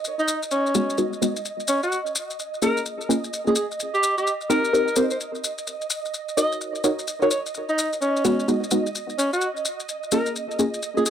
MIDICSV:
0, 0, Header, 1, 5, 480
1, 0, Start_track
1, 0, Tempo, 468750
1, 45, Time_signature, 4, 2, 24, 8
1, 11366, End_track
2, 0, Start_track
2, 0, Title_t, "Ambient pad"
2, 0, Program_c, 0, 92
2, 0, Note_on_c, 0, 75, 87
2, 1954, Note_off_c, 0, 75, 0
2, 1966, Note_on_c, 0, 75, 85
2, 11366, Note_off_c, 0, 75, 0
2, 11366, End_track
3, 0, Start_track
3, 0, Title_t, "Alto saxophone"
3, 0, Program_c, 1, 65
3, 196, Note_on_c, 1, 63, 85
3, 406, Note_off_c, 1, 63, 0
3, 526, Note_on_c, 1, 61, 86
3, 1006, Note_off_c, 1, 61, 0
3, 1725, Note_on_c, 1, 61, 90
3, 1846, Note_off_c, 1, 61, 0
3, 1877, Note_on_c, 1, 66, 88
3, 2026, Note_off_c, 1, 66, 0
3, 2687, Note_on_c, 1, 70, 89
3, 2865, Note_off_c, 1, 70, 0
3, 3556, Note_on_c, 1, 68, 85
3, 3613, Note_off_c, 1, 68, 0
3, 3647, Note_on_c, 1, 68, 76
3, 3743, Note_off_c, 1, 68, 0
3, 4037, Note_on_c, 1, 67, 87
3, 4246, Note_off_c, 1, 67, 0
3, 4276, Note_on_c, 1, 67, 86
3, 4412, Note_off_c, 1, 67, 0
3, 4605, Note_on_c, 1, 70, 91
3, 5068, Note_off_c, 1, 70, 0
3, 5085, Note_on_c, 1, 72, 82
3, 5182, Note_off_c, 1, 72, 0
3, 5237, Note_on_c, 1, 72, 74
3, 5294, Note_off_c, 1, 72, 0
3, 6524, Note_on_c, 1, 75, 91
3, 6703, Note_off_c, 1, 75, 0
3, 7396, Note_on_c, 1, 73, 85
3, 7453, Note_off_c, 1, 73, 0
3, 7485, Note_on_c, 1, 73, 76
3, 7582, Note_off_c, 1, 73, 0
3, 7876, Note_on_c, 1, 63, 89
3, 8086, Note_off_c, 1, 63, 0
3, 8206, Note_on_c, 1, 61, 87
3, 8686, Note_off_c, 1, 61, 0
3, 9404, Note_on_c, 1, 61, 91
3, 9526, Note_off_c, 1, 61, 0
3, 9555, Note_on_c, 1, 66, 86
3, 9705, Note_off_c, 1, 66, 0
3, 10367, Note_on_c, 1, 70, 89
3, 10545, Note_off_c, 1, 70, 0
3, 11234, Note_on_c, 1, 68, 85
3, 11292, Note_off_c, 1, 68, 0
3, 11325, Note_on_c, 1, 68, 77
3, 11366, Note_off_c, 1, 68, 0
3, 11366, End_track
4, 0, Start_track
4, 0, Title_t, "Synth stab"
4, 0, Program_c, 2, 62
4, 766, Note_on_c, 2, 56, 93
4, 766, Note_on_c, 2, 59, 87
4, 766, Note_on_c, 2, 63, 86
4, 766, Note_on_c, 2, 66, 105
4, 984, Note_off_c, 2, 56, 0
4, 984, Note_off_c, 2, 59, 0
4, 984, Note_off_c, 2, 63, 0
4, 984, Note_off_c, 2, 66, 0
4, 1004, Note_on_c, 2, 56, 83
4, 1005, Note_on_c, 2, 59, 78
4, 1005, Note_on_c, 2, 63, 78
4, 1005, Note_on_c, 2, 66, 96
4, 1159, Note_off_c, 2, 56, 0
4, 1160, Note_off_c, 2, 59, 0
4, 1160, Note_off_c, 2, 63, 0
4, 1160, Note_off_c, 2, 66, 0
4, 1245, Note_on_c, 2, 56, 81
4, 1245, Note_on_c, 2, 66, 88
4, 1246, Note_on_c, 2, 59, 74
4, 1246, Note_on_c, 2, 63, 73
4, 1400, Note_off_c, 2, 56, 0
4, 1400, Note_off_c, 2, 59, 0
4, 1400, Note_off_c, 2, 63, 0
4, 1400, Note_off_c, 2, 66, 0
4, 2685, Note_on_c, 2, 58, 76
4, 2685, Note_on_c, 2, 61, 72
4, 2685, Note_on_c, 2, 65, 70
4, 2685, Note_on_c, 2, 68, 84
4, 3144, Note_off_c, 2, 58, 0
4, 3144, Note_off_c, 2, 61, 0
4, 3144, Note_off_c, 2, 65, 0
4, 3144, Note_off_c, 2, 68, 0
4, 3165, Note_on_c, 2, 58, 88
4, 3165, Note_on_c, 2, 65, 78
4, 3166, Note_on_c, 2, 61, 78
4, 3166, Note_on_c, 2, 68, 98
4, 3376, Note_off_c, 2, 58, 0
4, 3376, Note_off_c, 2, 61, 0
4, 3376, Note_off_c, 2, 65, 0
4, 3376, Note_off_c, 2, 68, 0
4, 3557, Note_on_c, 2, 58, 73
4, 3557, Note_on_c, 2, 61, 68
4, 3557, Note_on_c, 2, 65, 67
4, 3557, Note_on_c, 2, 68, 83
4, 3652, Note_off_c, 2, 58, 0
4, 3652, Note_off_c, 2, 61, 0
4, 3652, Note_off_c, 2, 65, 0
4, 3652, Note_off_c, 2, 68, 0
4, 4605, Note_on_c, 2, 60, 96
4, 4605, Note_on_c, 2, 63, 89
4, 4605, Note_on_c, 2, 70, 108
4, 4606, Note_on_c, 2, 67, 87
4, 4824, Note_off_c, 2, 60, 0
4, 4824, Note_off_c, 2, 63, 0
4, 4824, Note_off_c, 2, 67, 0
4, 4824, Note_off_c, 2, 70, 0
4, 4845, Note_on_c, 2, 60, 87
4, 4845, Note_on_c, 2, 70, 96
4, 4846, Note_on_c, 2, 63, 81
4, 4846, Note_on_c, 2, 67, 80
4, 5000, Note_off_c, 2, 60, 0
4, 5000, Note_off_c, 2, 63, 0
4, 5000, Note_off_c, 2, 67, 0
4, 5000, Note_off_c, 2, 70, 0
4, 5085, Note_on_c, 2, 63, 72
4, 5085, Note_on_c, 2, 67, 73
4, 5085, Note_on_c, 2, 70, 87
4, 5086, Note_on_c, 2, 60, 79
4, 5240, Note_off_c, 2, 60, 0
4, 5240, Note_off_c, 2, 63, 0
4, 5240, Note_off_c, 2, 67, 0
4, 5240, Note_off_c, 2, 70, 0
4, 6525, Note_on_c, 2, 66, 69
4, 6526, Note_on_c, 2, 63, 80
4, 6526, Note_on_c, 2, 70, 70
4, 6526, Note_on_c, 2, 73, 85
4, 6984, Note_off_c, 2, 63, 0
4, 6984, Note_off_c, 2, 66, 0
4, 6984, Note_off_c, 2, 70, 0
4, 6984, Note_off_c, 2, 73, 0
4, 7005, Note_on_c, 2, 63, 88
4, 7005, Note_on_c, 2, 66, 80
4, 7005, Note_on_c, 2, 70, 78
4, 7005, Note_on_c, 2, 73, 94
4, 7215, Note_off_c, 2, 63, 0
4, 7215, Note_off_c, 2, 66, 0
4, 7215, Note_off_c, 2, 70, 0
4, 7215, Note_off_c, 2, 73, 0
4, 7397, Note_on_c, 2, 63, 74
4, 7397, Note_on_c, 2, 66, 67
4, 7397, Note_on_c, 2, 70, 68
4, 7397, Note_on_c, 2, 73, 83
4, 7491, Note_off_c, 2, 63, 0
4, 7491, Note_off_c, 2, 70, 0
4, 7492, Note_off_c, 2, 66, 0
4, 7492, Note_off_c, 2, 73, 0
4, 8444, Note_on_c, 2, 66, 108
4, 8445, Note_on_c, 2, 56, 95
4, 8445, Note_on_c, 2, 59, 87
4, 8445, Note_on_c, 2, 63, 86
4, 8664, Note_off_c, 2, 56, 0
4, 8664, Note_off_c, 2, 59, 0
4, 8664, Note_off_c, 2, 63, 0
4, 8664, Note_off_c, 2, 66, 0
4, 8685, Note_on_c, 2, 56, 86
4, 8685, Note_on_c, 2, 59, 77
4, 8685, Note_on_c, 2, 63, 81
4, 8686, Note_on_c, 2, 66, 95
4, 8840, Note_off_c, 2, 56, 0
4, 8840, Note_off_c, 2, 59, 0
4, 8840, Note_off_c, 2, 63, 0
4, 8840, Note_off_c, 2, 66, 0
4, 8924, Note_on_c, 2, 66, 89
4, 8925, Note_on_c, 2, 56, 79
4, 8925, Note_on_c, 2, 59, 72
4, 8925, Note_on_c, 2, 63, 75
4, 9080, Note_off_c, 2, 56, 0
4, 9080, Note_off_c, 2, 59, 0
4, 9080, Note_off_c, 2, 63, 0
4, 9080, Note_off_c, 2, 66, 0
4, 10364, Note_on_c, 2, 58, 76
4, 10364, Note_on_c, 2, 65, 70
4, 10364, Note_on_c, 2, 68, 86
4, 10365, Note_on_c, 2, 61, 71
4, 10823, Note_off_c, 2, 58, 0
4, 10823, Note_off_c, 2, 65, 0
4, 10823, Note_off_c, 2, 68, 0
4, 10824, Note_off_c, 2, 61, 0
4, 10844, Note_on_c, 2, 61, 78
4, 10844, Note_on_c, 2, 68, 92
4, 10845, Note_on_c, 2, 58, 85
4, 10845, Note_on_c, 2, 65, 76
4, 11055, Note_off_c, 2, 58, 0
4, 11055, Note_off_c, 2, 61, 0
4, 11055, Note_off_c, 2, 65, 0
4, 11055, Note_off_c, 2, 68, 0
4, 11236, Note_on_c, 2, 58, 75
4, 11236, Note_on_c, 2, 61, 67
4, 11236, Note_on_c, 2, 65, 65
4, 11236, Note_on_c, 2, 68, 81
4, 11331, Note_off_c, 2, 58, 0
4, 11331, Note_off_c, 2, 61, 0
4, 11331, Note_off_c, 2, 65, 0
4, 11331, Note_off_c, 2, 68, 0
4, 11366, End_track
5, 0, Start_track
5, 0, Title_t, "Drums"
5, 46, Note_on_c, 9, 70, 45
5, 149, Note_off_c, 9, 70, 0
5, 197, Note_on_c, 9, 70, 25
5, 286, Note_off_c, 9, 70, 0
5, 286, Note_on_c, 9, 70, 83
5, 388, Note_off_c, 9, 70, 0
5, 436, Note_on_c, 9, 70, 39
5, 523, Note_off_c, 9, 70, 0
5, 523, Note_on_c, 9, 70, 43
5, 625, Note_off_c, 9, 70, 0
5, 680, Note_on_c, 9, 70, 23
5, 764, Note_off_c, 9, 70, 0
5, 764, Note_on_c, 9, 70, 86
5, 764, Note_on_c, 9, 75, 56
5, 867, Note_off_c, 9, 70, 0
5, 867, Note_off_c, 9, 75, 0
5, 919, Note_on_c, 9, 70, 38
5, 1001, Note_off_c, 9, 70, 0
5, 1001, Note_on_c, 9, 70, 43
5, 1104, Note_off_c, 9, 70, 0
5, 1157, Note_on_c, 9, 70, 25
5, 1252, Note_off_c, 9, 70, 0
5, 1252, Note_on_c, 9, 70, 79
5, 1354, Note_off_c, 9, 70, 0
5, 1396, Note_on_c, 9, 70, 38
5, 1487, Note_off_c, 9, 70, 0
5, 1487, Note_on_c, 9, 70, 44
5, 1590, Note_off_c, 9, 70, 0
5, 1638, Note_on_c, 9, 70, 27
5, 1717, Note_off_c, 9, 70, 0
5, 1717, Note_on_c, 9, 70, 89
5, 1819, Note_off_c, 9, 70, 0
5, 1875, Note_on_c, 9, 70, 33
5, 1966, Note_off_c, 9, 70, 0
5, 1966, Note_on_c, 9, 70, 48
5, 2069, Note_off_c, 9, 70, 0
5, 2114, Note_on_c, 9, 70, 26
5, 2205, Note_off_c, 9, 70, 0
5, 2205, Note_on_c, 9, 70, 87
5, 2307, Note_off_c, 9, 70, 0
5, 2359, Note_on_c, 9, 70, 35
5, 2452, Note_off_c, 9, 70, 0
5, 2452, Note_on_c, 9, 70, 46
5, 2554, Note_off_c, 9, 70, 0
5, 2600, Note_on_c, 9, 70, 23
5, 2685, Note_off_c, 9, 70, 0
5, 2685, Note_on_c, 9, 70, 96
5, 2788, Note_off_c, 9, 70, 0
5, 2837, Note_on_c, 9, 70, 39
5, 2925, Note_off_c, 9, 70, 0
5, 2925, Note_on_c, 9, 70, 49
5, 3027, Note_off_c, 9, 70, 0
5, 3081, Note_on_c, 9, 70, 26
5, 3177, Note_off_c, 9, 70, 0
5, 3177, Note_on_c, 9, 70, 89
5, 3280, Note_off_c, 9, 70, 0
5, 3318, Note_on_c, 9, 70, 36
5, 3413, Note_off_c, 9, 70, 0
5, 3413, Note_on_c, 9, 70, 48
5, 3515, Note_off_c, 9, 70, 0
5, 3555, Note_on_c, 9, 70, 25
5, 3640, Note_off_c, 9, 70, 0
5, 3640, Note_on_c, 9, 70, 83
5, 3742, Note_off_c, 9, 70, 0
5, 3803, Note_on_c, 9, 70, 37
5, 3889, Note_off_c, 9, 70, 0
5, 3889, Note_on_c, 9, 70, 55
5, 3991, Note_off_c, 9, 70, 0
5, 4039, Note_on_c, 9, 70, 26
5, 4128, Note_off_c, 9, 70, 0
5, 4128, Note_on_c, 9, 70, 88
5, 4231, Note_off_c, 9, 70, 0
5, 4279, Note_on_c, 9, 70, 35
5, 4373, Note_off_c, 9, 70, 0
5, 4373, Note_on_c, 9, 70, 50
5, 4475, Note_off_c, 9, 70, 0
5, 4514, Note_on_c, 9, 70, 27
5, 4605, Note_on_c, 9, 75, 54
5, 4610, Note_off_c, 9, 70, 0
5, 4610, Note_on_c, 9, 70, 83
5, 4707, Note_off_c, 9, 75, 0
5, 4712, Note_off_c, 9, 70, 0
5, 4757, Note_on_c, 9, 70, 37
5, 4859, Note_off_c, 9, 70, 0
5, 4859, Note_on_c, 9, 70, 50
5, 4961, Note_off_c, 9, 70, 0
5, 4995, Note_on_c, 9, 70, 26
5, 5078, Note_off_c, 9, 70, 0
5, 5078, Note_on_c, 9, 70, 94
5, 5181, Note_off_c, 9, 70, 0
5, 5227, Note_on_c, 9, 70, 42
5, 5329, Note_off_c, 9, 70, 0
5, 5330, Note_on_c, 9, 70, 48
5, 5432, Note_off_c, 9, 70, 0
5, 5478, Note_on_c, 9, 70, 26
5, 5570, Note_off_c, 9, 70, 0
5, 5570, Note_on_c, 9, 70, 83
5, 5672, Note_off_c, 9, 70, 0
5, 5715, Note_on_c, 9, 70, 36
5, 5807, Note_off_c, 9, 70, 0
5, 5807, Note_on_c, 9, 70, 51
5, 5909, Note_off_c, 9, 70, 0
5, 5954, Note_on_c, 9, 70, 25
5, 6042, Note_off_c, 9, 70, 0
5, 6042, Note_on_c, 9, 70, 95
5, 6144, Note_off_c, 9, 70, 0
5, 6199, Note_on_c, 9, 70, 36
5, 6286, Note_off_c, 9, 70, 0
5, 6286, Note_on_c, 9, 70, 48
5, 6389, Note_off_c, 9, 70, 0
5, 6436, Note_on_c, 9, 70, 24
5, 6529, Note_off_c, 9, 70, 0
5, 6529, Note_on_c, 9, 70, 90
5, 6631, Note_off_c, 9, 70, 0
5, 6678, Note_on_c, 9, 70, 36
5, 6769, Note_off_c, 9, 70, 0
5, 6769, Note_on_c, 9, 70, 52
5, 6871, Note_off_c, 9, 70, 0
5, 6914, Note_on_c, 9, 70, 26
5, 7003, Note_off_c, 9, 70, 0
5, 7003, Note_on_c, 9, 70, 92
5, 7106, Note_off_c, 9, 70, 0
5, 7156, Note_on_c, 9, 70, 41
5, 7245, Note_off_c, 9, 70, 0
5, 7245, Note_on_c, 9, 70, 58
5, 7347, Note_off_c, 9, 70, 0
5, 7393, Note_on_c, 9, 70, 25
5, 7482, Note_off_c, 9, 70, 0
5, 7482, Note_on_c, 9, 70, 85
5, 7584, Note_off_c, 9, 70, 0
5, 7640, Note_on_c, 9, 70, 40
5, 7725, Note_off_c, 9, 70, 0
5, 7725, Note_on_c, 9, 70, 48
5, 7827, Note_off_c, 9, 70, 0
5, 7873, Note_on_c, 9, 70, 26
5, 7970, Note_off_c, 9, 70, 0
5, 7970, Note_on_c, 9, 70, 88
5, 8072, Note_off_c, 9, 70, 0
5, 8118, Note_on_c, 9, 70, 36
5, 8209, Note_off_c, 9, 70, 0
5, 8209, Note_on_c, 9, 70, 54
5, 8311, Note_off_c, 9, 70, 0
5, 8360, Note_on_c, 9, 70, 27
5, 8443, Note_on_c, 9, 75, 59
5, 8446, Note_off_c, 9, 70, 0
5, 8446, Note_on_c, 9, 70, 94
5, 8546, Note_off_c, 9, 75, 0
5, 8548, Note_off_c, 9, 70, 0
5, 8597, Note_on_c, 9, 70, 41
5, 8687, Note_off_c, 9, 70, 0
5, 8687, Note_on_c, 9, 70, 46
5, 8789, Note_off_c, 9, 70, 0
5, 8843, Note_on_c, 9, 70, 28
5, 8917, Note_off_c, 9, 70, 0
5, 8917, Note_on_c, 9, 70, 99
5, 9020, Note_off_c, 9, 70, 0
5, 9076, Note_on_c, 9, 70, 38
5, 9166, Note_off_c, 9, 70, 0
5, 9166, Note_on_c, 9, 70, 53
5, 9268, Note_off_c, 9, 70, 0
5, 9313, Note_on_c, 9, 70, 27
5, 9408, Note_off_c, 9, 70, 0
5, 9408, Note_on_c, 9, 70, 88
5, 9511, Note_off_c, 9, 70, 0
5, 9556, Note_on_c, 9, 70, 39
5, 9638, Note_off_c, 9, 70, 0
5, 9638, Note_on_c, 9, 70, 51
5, 9740, Note_off_c, 9, 70, 0
5, 9795, Note_on_c, 9, 70, 26
5, 9882, Note_off_c, 9, 70, 0
5, 9882, Note_on_c, 9, 70, 79
5, 9985, Note_off_c, 9, 70, 0
5, 10034, Note_on_c, 9, 70, 36
5, 10125, Note_off_c, 9, 70, 0
5, 10125, Note_on_c, 9, 70, 52
5, 10227, Note_off_c, 9, 70, 0
5, 10273, Note_on_c, 9, 70, 27
5, 10360, Note_off_c, 9, 70, 0
5, 10360, Note_on_c, 9, 70, 98
5, 10462, Note_off_c, 9, 70, 0
5, 10507, Note_on_c, 9, 70, 41
5, 10607, Note_off_c, 9, 70, 0
5, 10607, Note_on_c, 9, 70, 44
5, 10709, Note_off_c, 9, 70, 0
5, 10764, Note_on_c, 9, 70, 22
5, 10846, Note_off_c, 9, 70, 0
5, 10846, Note_on_c, 9, 70, 81
5, 10948, Note_off_c, 9, 70, 0
5, 10997, Note_on_c, 9, 70, 40
5, 11086, Note_off_c, 9, 70, 0
5, 11086, Note_on_c, 9, 70, 51
5, 11188, Note_off_c, 9, 70, 0
5, 11236, Note_on_c, 9, 70, 25
5, 11323, Note_off_c, 9, 70, 0
5, 11323, Note_on_c, 9, 70, 92
5, 11366, Note_off_c, 9, 70, 0
5, 11366, End_track
0, 0, End_of_file